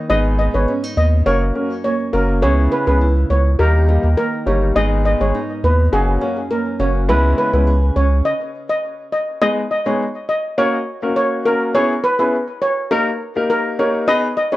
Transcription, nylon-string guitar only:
Already playing: D#3 A#3
0.10 G#2 D#4
0.39 B3
0.68 C#4
0.84 D#4
0.97 B3
1.26 F#2
1.55 C#4
1.85 A#3
2.14 C#4
2.43 C#3 E4
2.72 B3
3.01 E4
3.30 B3
3.59 D#3
3.88 D#4
4.18 A#3
4.47 D#4
4.76 G#2 D#4
5.05 B3
5.34 D#4
5.63 B3
5.92 F#2
6.21 C#4
6.51 A#3
6.80 C#4
7.09 C#3 G#4
7.38 C#4
7.67 G#4
7.96 C#4

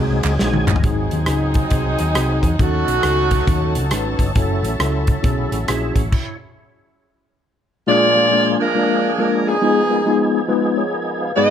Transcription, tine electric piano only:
Already playing: G#3 C4 D#4 F#4 G#4
0.40 G#3 C4 D#4 F#4 G#4
0.83 G#2 C4 D#4 F#4 G#4
1.27 C4 D#4 F#4 G#4
1.71 C4 D#4 F#4 G#4
2.15 C4 D#4 F#4 G#4
2.59 D#3 C#4 D#4 F#4 A4
3.03 C#4 D#4 F#4 A4
3.48 C#4 D#4 F#4 A4
3.92 C#4 D#4 F#4 B4
4.35 C#4 E4 F#4 A4
4.80 C#4 E4 F#4 A4
5.22 C#4 E4 F#4 G#4
5.67 C#4 E4 F#4 G#4
7.87 A#2 G#3 A#3 D4 F4 G#4
8.15 G#3 A#3 D4 F4 G#4
8.31 G#3 A#3 D4 F4 A#4
8.75 G#3 A#3 D4 F4 A#4
9.18 G#3 A#3 D4 F4 A#4
9.62 G#3 B3 D#4 F4 G#4
9.90 G#3 B3 D#4 F4 A#4
10.06 G#3 B3 D#4 F4 G#4
10.48 G#3 B3 D#4 F4 B4
10.77 G#4 C#5
10.93 A#4 D#5
11.21 B4 F5
11.37 G#2 G#3 B3 D#4 F#4 G#4

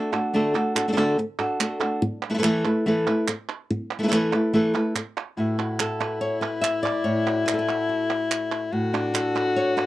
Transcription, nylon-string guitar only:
Already playing: A3 D4 F#4 A4
0.12 D4 F#4 A4
0.34 D3 A3 D4 F#4 A4
0.54 D4 F#4 A4
0.75 D4 F#4 A4
0.88 A3 D4 F#4 A4
0.92 A3 D4 F#4 A4
0.97 D3 A3 D4 F#4 A4
1.18 muted nylon-string guitar stroke
1.39 D4 F#4 A4
1.60 A3 D4 F#4 A4
1.80 D4 F#4 A4
2.02 muted nylon-string guitar stroke
2.30 A3 E4 A4 B4
2.34 A3 E4 A4 B4
2.38 A3 E4 A4 B4
2.43 E3 A3 E4 A4 B4
2.65 E4 A4 B4
2.86 E3 A3 E4 A4 B4
3.07 E4 A4 B4
3.28 muted nylon-string guitar stroke
3.71 muted nylon-string guitar stroke
3.99 A3 E4 A4 B4
4.03 A3 E4 A4 B4
4.08 A3 E4 A4 B4
4.12 E3 A3 E4 A4 B4
4.33 E4 A4 B4
4.53 E3 A3 E4 A4 B4
4.74 E4 A4 B4
4.95 muted nylon-string guitar stroke
5.37 A2 F#4 B4 E5
5.58 F#4
5.80 A4
6.00 B4
6.21 C#5
6.41 B4
6.61 E5
6.83 D5
7.04 A2 C#5
7.26 F#4
7.46 B4
7.54 A4
7.59 B4
7.68 F#4
7.89 F#4
8.72 A2
8.93 D4
9.14 A4
9.35 B4
9.56 C#5
9.77 B4

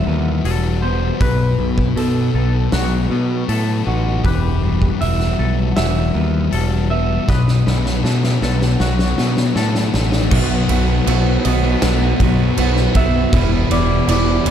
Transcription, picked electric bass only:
0.07 D#2
0.44 E1
1.21 B1
1.59 B1
1.96 B2
2.34 B1
2.72 B1
3.10 B2
3.49 A2
3.87 A1
4.24 E1
5.01 E1
5.39 B1
5.77 E1
6.15 D#2
6.52 E1
7.29 B1
7.67 B1
8.04 B2
8.42 B1
8.80 B1
9.18 B2
9.56 A2
9.94 A1
10.32 B1
10.69 B1
11.07 B1
11.45 B1
11.83 B1
12.20 B1
12.58 B1
12.95 B1
13.33 E1
13.71 E1
14.08 E1
14.45 E1

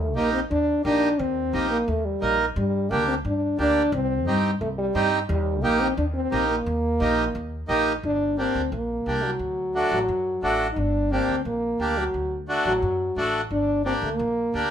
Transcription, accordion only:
0.16 A#3 D#4 G4
0.85 A#3 D#4 G4
1.53 A#3 D#4 G4
2.21 A#3 D#4 A#4
2.91 A#3 D4 G4
3.58 A#3 D4 G4
4.27 C4 D#4 G4
4.95 C4 D#4 G4
5.63 A#3 D#4 G4
6.31 A#3 D#4 G4
7.00 A#3 D#4 G4
7.68 A#3 D#4 G4
8.38 A#3 D4 G4
9.07 A#3 D4 G4
9.75 A3 D4 F#4
10.43 A3 D4 F#4
11.11 A#3 D4 G4
11.80 A#3 D4 G4
12.48 A3 D4 F#4
13.17 A3 D4 F#4
13.85 A#3 D4 G4
14.54 A#3 D4 G4

